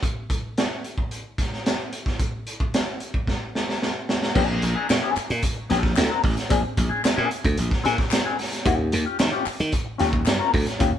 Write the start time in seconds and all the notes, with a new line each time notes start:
0.03 kick, closed hi-hat
0.30 kick, closed hi-hat
0.58 snare, closed hi-hat
0.84 closed hi-hat
0.98 kick
1.11 closed hi-hat
1.38 kick, snare, closed hi-hat
1.53 snare
1.66 snare, closed hi-hat
1.93 closed hi-hat
2.06 kick, snare
2.20 kick, closed hi-hat
2.47 closed hi-hat
2.60 kick
2.74 snare, closed hi-hat
3.00 closed hi-hat
3.14 kick
3.27 kick, snare
3.55 snare
3.69 snare
3.82 snare
4.09 snare
4.22 snare
4.35 A#1 C4 D4 G#4, kick, crash
4.49 muted clean electric guitar stroke
4.62 A#1, muted clean electric guitar stroke, closed hi-hat
4.75 C4 D4 G#4
4.89 A#2, muted clean electric guitar stroke, snare, clap, closed hi-hat
5.02 C4 D4 G#4
5.16 muted clean electric guitar stroke, muted slap bass stroke, clap, closed hi-hat
5.30 A#2, muted clean electric guitar stroke, closed hi-hat
5.43 muted clean electric guitar stroke, kick, closed hi-hat
5.56 muted clean electric guitar stroke
5.70 A#1 C4 D4 G#4, snare, closed hi-hat
5.83 muted clean electric guitar stroke, kick, snare
5.96 D2, muted clean electric guitar stroke, snare, clap, closed hi-hat
6.09 C4 D4 A#4
6.23 A1, muted clean electric guitar stroke, kick, open hi-hat
6.36 muted clean electric guitar stroke, snare, closed hi-hat
6.49 A#1 C4 D4 G#4, kick, closed hi-hat
6.64 muted clean electric guitar stroke
6.77 A#1, muted clean electric guitar stroke, kick, closed hi-hat
6.89 C4 D4 G#4
7.03 muted clean electric guitar stroke, muted slap bass stroke, snare, clap, closed hi-hat
7.16 A#2 C4 D4 G#4
7.31 closed hi-hat
7.44 D2, muted clean electric guitar stroke, kick, closed hi-hat
7.57 A#1, muted clean electric guitar stroke, closed hi-hat
7.71 muted clean electric guitar stroke, kick, snare
7.84 A#2 C4 D4 G#4, snare, closed hi-hat
7.98 muted clean electric guitar stroke, kick, snare
8.11 muted clean electric guitar stroke, snare, clap, closed hi-hat
8.25 C4 D4 G#4
8.38 muted clean electric guitar stroke, snare, open hi-hat
8.52 muted clean electric guitar stroke, snare, closed hi-hat
8.65 D#2 C#4 F4 G4, kick, closed hi-hat
8.79 muted clean electric guitar stroke
8.92 D#2, muted clean electric guitar stroke, closed hi-hat
9.05 C#4 F4 G4
9.19 D#3, muted clean electric guitar stroke, snare, clap, closed hi-hat
9.32 C#4 F4 G4
9.46 muted clean electric guitar stroke, muted slap bass stroke, clap, open hi-hat
9.59 D#3, muted clean electric guitar stroke, closed hi-hat
9.72 muted clean electric guitar stroke, kick, closed hi-hat
9.86 muted clean electric guitar stroke
9.98 D#2 C#4 F4 G4, snare, closed hi-hat
10.12 muted clean electric guitar stroke, kick
10.26 G2, muted clean electric guitar stroke, snare, clap, closed hi-hat
10.39 C#4 F4 A#4
10.53 D2, muted clean electric guitar stroke, kick, open hi-hat
10.66 muted clean electric guitar stroke, snare, closed hi-hat
10.79 D#2 C#4 F4 G4, kick, closed hi-hat
10.93 muted clean electric guitar stroke